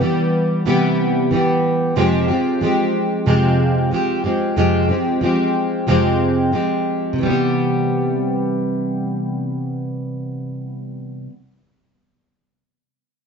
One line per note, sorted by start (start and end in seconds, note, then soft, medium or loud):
0.00 0.65 E3 medium
0.00 0.66 G3 medium
0.00 0.66 B3 medium
0.00 0.67 G4 medium
0.66 1.31 C3 medium
0.66 1.30 E3 medium
0.66 1.32 G3 medium
0.66 1.32 B3 medium
0.66 1.34 G4 medium
1.31 1.96 E3 medium
1.31 1.97 G3 medium
1.31 1.97 B3 medium
1.31 1.98 G4 medium
1.96 2.29 F2 medium
1.96 2.29 C3 medium
1.96 2.29 F3 medium
1.96 2.29 G#3 medium
1.96 2.28 C4 medium
1.96 2.27 G4 medium
2.28 2.60 F3 soft
2.28 2.61 G#3 soft
2.28 2.62 C4 soft
2.28 2.61 G4 soft
2.61 3.26 F3 medium
2.61 3.26 G#3 medium
2.61 3.27 C4 medium
2.61 3.28 G4 medium
3.26 3.92 F2 medium
3.26 3.92 C3 medium
3.26 3.90 F3 medium
3.26 3.91 G#3 medium
3.26 3.93 C4 medium
3.26 3.94 G4 medium
3.91 4.24 F3 medium
3.91 4.25 G#3 medium
3.91 4.24 C4 medium
3.91 4.23 G4 medium
4.24 4.56 F3 soft
4.24 4.57 G#3 soft
4.24 4.57 C4 soft
4.24 4.57 G4 soft
4.56 4.89 F2 medium
4.56 4.90 C3 medium
4.56 4.90 F3 medium
4.56 4.90 G#3 medium
4.56 4.89 C4 medium
4.56 4.87 G4 medium
4.89 5.20 F3 soft
4.89 5.21 G#3 soft
4.89 5.22 C4 soft
4.89 5.22 G4 soft
5.21 5.87 F3 medium
5.21 5.87 G#3 medium
5.21 5.88 C4 medium
5.21 5.89 G4 medium
5.87 6.53 F2 medium
5.87 6.53 C3 medium
5.87 6.51 F3 medium
5.87 6.52 G#3 medium
5.87 6.54 C4 medium
5.87 6.55 G4 medium
6.52 7.18 F3 soft
6.52 7.18 G#3 medium
6.52 7.26 C4 medium
6.52 7.30 G4 medium
7.13 11.27 C3 medium
7.18 11.30 E3 medium
7.23 11.32 G3 medium
7.23 11.34 B3 medium
7.30 11.36 G4 medium